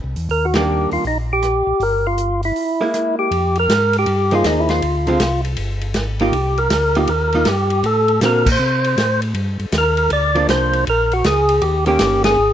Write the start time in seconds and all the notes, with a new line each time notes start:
0.04 C2
0.16 E2, open hi-hat
0.29 D#2 A#4, open hi-hat
0.45 F#4
0.54 D#3 G3 A#3 D4 G4, snare, ride
0.91 D#2 F4, open hi-hat
1.04 A#1 D#4, open hi-hat
1.33 G4
1.42 cross-stick, closed hi-hat
1.67 A#1
1.80 G1 A#4, open hi-hat
2.07 F4
2.18 closed hi-hat
2.43 E4, open hi-hat
2.56 open hi-hat
2.81 G#3 A#3 E4
2.94 cross-stick, closed hi-hat
3.19 G4
3.31 F2, ride
3.55 A#4, ride
3.69 G#2, snare, hi-hat pedal, ride
3.93 ride
3.99 G4
4.06 G2, ride
4.31 F3 A#3 D#4 F4 G#4, ride
4.44 D#2 D#4, snare, hi-hat pedal, ride
4.60 E4
4.69 F4, snare, ride
4.82 D2, ride
5.07 D3 G#3 C4 F4, ride
5.20 C2, snare, hi-hat pedal, ride
5.45 ride
5.57 G1, ride
5.81 ride
5.94 G#1, snare, hi-hat pedal, ride
6.19 A#3 D#4 F4 G4, ride
6.32 C2, ride
6.57 A#4, ride
6.70 D2, snare, hi-hat pedal, ride
6.95 A#3 D#4 F4 G4, ride
7.07 D#2 A#4, ride
7.32 A#3 D#4 F4, ride
7.45 G2 G4, snare, hi-hat pedal, ride
7.70 ride
7.83 A2 A4, ride
8.08 ride
8.21 A#2 D3 A#3 C4 F#4, snare, hi-hat pedal, ride
8.25 A#4
8.46 kick, crash
8.52 C5
8.59 C3
8.84 ride
8.97 A2, snare, hi-hat pedal, ride
9.22 ride
9.34 G2, ride
9.59 G2, ride
9.72 D#2, snare, hi-hat pedal, ride
9.78 A#4
9.97 ride
10.10 D2 D5, ride
10.35 F3 A#3 D4, ride
10.48 C2 C5, snare, hi-hat pedal, ride
10.73 ride
10.87 A#1 A#4, ride
11.12 F#4, ride
11.24 C#2 G#4, snare, hi-hat pedal, ride
11.49 ride
11.62 D#2 G4, ride
11.86 D#3 A#3 C#4 G4, ride
11.99 G1, snare, hi-hat pedal, ride
12.24 G#4, snare, ride
12.38 G#1